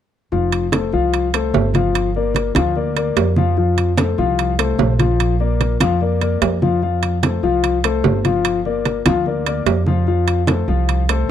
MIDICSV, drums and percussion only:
0, 0, Header, 1, 2, 480
1, 0, Start_track
1, 0, Key_signature, -1, "major"
1, 0, Tempo, 406504
1, 379, Time_signature, 4, 2, 24, 8
1, 13352, End_track
2, 0, Start_track
2, 0, Title_t, "Drums"
2, 376, Note_on_c, 9, 63, 28
2, 494, Note_off_c, 9, 63, 0
2, 614, Note_on_c, 9, 63, 25
2, 620, Note_on_c, 9, 65, 62
2, 732, Note_off_c, 9, 63, 0
2, 738, Note_off_c, 9, 65, 0
2, 853, Note_on_c, 9, 63, 76
2, 860, Note_on_c, 9, 65, 70
2, 860, Note_on_c, 9, 66, 44
2, 972, Note_off_c, 9, 63, 0
2, 978, Note_off_c, 9, 65, 0
2, 978, Note_off_c, 9, 66, 0
2, 1092, Note_on_c, 9, 63, 31
2, 1210, Note_off_c, 9, 63, 0
2, 1331, Note_on_c, 9, 63, 29
2, 1341, Note_on_c, 9, 65, 57
2, 1449, Note_off_c, 9, 63, 0
2, 1459, Note_off_c, 9, 65, 0
2, 1573, Note_on_c, 9, 63, 31
2, 1581, Note_on_c, 9, 65, 86
2, 1691, Note_off_c, 9, 63, 0
2, 1699, Note_off_c, 9, 65, 0
2, 1815, Note_on_c, 9, 63, 65
2, 1822, Note_on_c, 9, 66, 65
2, 1934, Note_off_c, 9, 63, 0
2, 1940, Note_off_c, 9, 66, 0
2, 2054, Note_on_c, 9, 63, 68
2, 2064, Note_on_c, 9, 65, 53
2, 2172, Note_off_c, 9, 63, 0
2, 2182, Note_off_c, 9, 65, 0
2, 2295, Note_on_c, 9, 63, 28
2, 2306, Note_on_c, 9, 65, 67
2, 2413, Note_off_c, 9, 63, 0
2, 2424, Note_off_c, 9, 65, 0
2, 2533, Note_on_c, 9, 63, 28
2, 2651, Note_off_c, 9, 63, 0
2, 2770, Note_on_c, 9, 63, 49
2, 2785, Note_on_c, 9, 65, 57
2, 2785, Note_on_c, 9, 66, 48
2, 2888, Note_off_c, 9, 63, 0
2, 2903, Note_off_c, 9, 65, 0
2, 2903, Note_off_c, 9, 66, 0
2, 3010, Note_on_c, 9, 63, 80
2, 3022, Note_on_c, 9, 65, 76
2, 3128, Note_off_c, 9, 63, 0
2, 3140, Note_off_c, 9, 65, 0
2, 3253, Note_on_c, 9, 63, 25
2, 3371, Note_off_c, 9, 63, 0
2, 3495, Note_on_c, 9, 63, 30
2, 3502, Note_on_c, 9, 65, 59
2, 3613, Note_off_c, 9, 63, 0
2, 3620, Note_off_c, 9, 65, 0
2, 3731, Note_on_c, 9, 63, 29
2, 3740, Note_on_c, 9, 65, 70
2, 3740, Note_on_c, 9, 66, 63
2, 3849, Note_off_c, 9, 63, 0
2, 3858, Note_off_c, 9, 65, 0
2, 3858, Note_off_c, 9, 66, 0
2, 3972, Note_on_c, 9, 63, 68
2, 4091, Note_off_c, 9, 63, 0
2, 4216, Note_on_c, 9, 63, 27
2, 4334, Note_off_c, 9, 63, 0
2, 4451, Note_on_c, 9, 63, 28
2, 4461, Note_on_c, 9, 65, 60
2, 4569, Note_off_c, 9, 63, 0
2, 4579, Note_off_c, 9, 65, 0
2, 4694, Note_on_c, 9, 63, 90
2, 4700, Note_on_c, 9, 65, 74
2, 4700, Note_on_c, 9, 66, 54
2, 4812, Note_off_c, 9, 63, 0
2, 4818, Note_off_c, 9, 65, 0
2, 4818, Note_off_c, 9, 66, 0
2, 4936, Note_on_c, 9, 63, 30
2, 5054, Note_off_c, 9, 63, 0
2, 5177, Note_on_c, 9, 63, 28
2, 5183, Note_on_c, 9, 65, 61
2, 5295, Note_off_c, 9, 63, 0
2, 5301, Note_off_c, 9, 65, 0
2, 5419, Note_on_c, 9, 63, 30
2, 5420, Note_on_c, 9, 65, 87
2, 5537, Note_off_c, 9, 63, 0
2, 5539, Note_off_c, 9, 65, 0
2, 5652, Note_on_c, 9, 63, 67
2, 5659, Note_on_c, 9, 66, 63
2, 5770, Note_off_c, 9, 63, 0
2, 5777, Note_off_c, 9, 66, 0
2, 5894, Note_on_c, 9, 63, 66
2, 5899, Note_on_c, 9, 65, 59
2, 6012, Note_off_c, 9, 63, 0
2, 6017, Note_off_c, 9, 65, 0
2, 6138, Note_on_c, 9, 63, 28
2, 6142, Note_on_c, 9, 65, 68
2, 6256, Note_off_c, 9, 63, 0
2, 6260, Note_off_c, 9, 65, 0
2, 6375, Note_on_c, 9, 63, 26
2, 6493, Note_off_c, 9, 63, 0
2, 6617, Note_on_c, 9, 63, 51
2, 6620, Note_on_c, 9, 65, 58
2, 6620, Note_on_c, 9, 66, 49
2, 6735, Note_off_c, 9, 63, 0
2, 6738, Note_off_c, 9, 65, 0
2, 6738, Note_off_c, 9, 66, 0
2, 6853, Note_on_c, 9, 63, 84
2, 6858, Note_on_c, 9, 65, 87
2, 6972, Note_off_c, 9, 63, 0
2, 6976, Note_off_c, 9, 65, 0
2, 7097, Note_on_c, 9, 63, 28
2, 7215, Note_off_c, 9, 63, 0
2, 7338, Note_on_c, 9, 65, 57
2, 7340, Note_on_c, 9, 63, 30
2, 7456, Note_off_c, 9, 65, 0
2, 7458, Note_off_c, 9, 63, 0
2, 7578, Note_on_c, 9, 65, 74
2, 7578, Note_on_c, 9, 66, 56
2, 7579, Note_on_c, 9, 63, 30
2, 7697, Note_off_c, 9, 63, 0
2, 7697, Note_off_c, 9, 65, 0
2, 7697, Note_off_c, 9, 66, 0
2, 7818, Note_on_c, 9, 63, 70
2, 7936, Note_off_c, 9, 63, 0
2, 8057, Note_on_c, 9, 63, 27
2, 8175, Note_off_c, 9, 63, 0
2, 8297, Note_on_c, 9, 65, 61
2, 8298, Note_on_c, 9, 63, 28
2, 8415, Note_off_c, 9, 65, 0
2, 8416, Note_off_c, 9, 63, 0
2, 8536, Note_on_c, 9, 63, 78
2, 8540, Note_on_c, 9, 65, 74
2, 8540, Note_on_c, 9, 66, 50
2, 8654, Note_off_c, 9, 63, 0
2, 8658, Note_off_c, 9, 65, 0
2, 8658, Note_off_c, 9, 66, 0
2, 8771, Note_on_c, 9, 63, 31
2, 8889, Note_off_c, 9, 63, 0
2, 9014, Note_on_c, 9, 63, 29
2, 9018, Note_on_c, 9, 65, 65
2, 9132, Note_off_c, 9, 63, 0
2, 9136, Note_off_c, 9, 65, 0
2, 9259, Note_on_c, 9, 63, 31
2, 9259, Note_on_c, 9, 65, 85
2, 9377, Note_off_c, 9, 63, 0
2, 9377, Note_off_c, 9, 65, 0
2, 9495, Note_on_c, 9, 66, 63
2, 9500, Note_on_c, 9, 63, 75
2, 9613, Note_off_c, 9, 66, 0
2, 9619, Note_off_c, 9, 63, 0
2, 9736, Note_on_c, 9, 63, 58
2, 9739, Note_on_c, 9, 65, 59
2, 9854, Note_off_c, 9, 63, 0
2, 9857, Note_off_c, 9, 65, 0
2, 9976, Note_on_c, 9, 65, 79
2, 9979, Note_on_c, 9, 63, 29
2, 10094, Note_off_c, 9, 65, 0
2, 10097, Note_off_c, 9, 63, 0
2, 10216, Note_on_c, 9, 63, 30
2, 10334, Note_off_c, 9, 63, 0
2, 10456, Note_on_c, 9, 65, 53
2, 10456, Note_on_c, 9, 66, 53
2, 10458, Note_on_c, 9, 63, 54
2, 10574, Note_off_c, 9, 65, 0
2, 10574, Note_off_c, 9, 66, 0
2, 10576, Note_off_c, 9, 63, 0
2, 10694, Note_on_c, 9, 65, 79
2, 10696, Note_on_c, 9, 63, 88
2, 10812, Note_off_c, 9, 65, 0
2, 10814, Note_off_c, 9, 63, 0
2, 10934, Note_on_c, 9, 63, 29
2, 11052, Note_off_c, 9, 63, 0
2, 11172, Note_on_c, 9, 63, 26
2, 11176, Note_on_c, 9, 65, 66
2, 11290, Note_off_c, 9, 63, 0
2, 11294, Note_off_c, 9, 65, 0
2, 11413, Note_on_c, 9, 65, 62
2, 11413, Note_on_c, 9, 66, 63
2, 11414, Note_on_c, 9, 63, 29
2, 11531, Note_off_c, 9, 65, 0
2, 11531, Note_off_c, 9, 66, 0
2, 11532, Note_off_c, 9, 63, 0
2, 11648, Note_on_c, 9, 63, 64
2, 11766, Note_off_c, 9, 63, 0
2, 11890, Note_on_c, 9, 63, 31
2, 12008, Note_off_c, 9, 63, 0
2, 12129, Note_on_c, 9, 63, 31
2, 12134, Note_on_c, 9, 65, 64
2, 12247, Note_off_c, 9, 63, 0
2, 12252, Note_off_c, 9, 65, 0
2, 12367, Note_on_c, 9, 63, 81
2, 12375, Note_on_c, 9, 65, 68
2, 12375, Note_on_c, 9, 66, 48
2, 12485, Note_off_c, 9, 63, 0
2, 12493, Note_off_c, 9, 65, 0
2, 12493, Note_off_c, 9, 66, 0
2, 12610, Note_on_c, 9, 63, 33
2, 12728, Note_off_c, 9, 63, 0
2, 12854, Note_on_c, 9, 63, 30
2, 12857, Note_on_c, 9, 65, 58
2, 12972, Note_off_c, 9, 63, 0
2, 12975, Note_off_c, 9, 65, 0
2, 13094, Note_on_c, 9, 63, 28
2, 13097, Note_on_c, 9, 65, 85
2, 13212, Note_off_c, 9, 63, 0
2, 13215, Note_off_c, 9, 65, 0
2, 13352, End_track
0, 0, End_of_file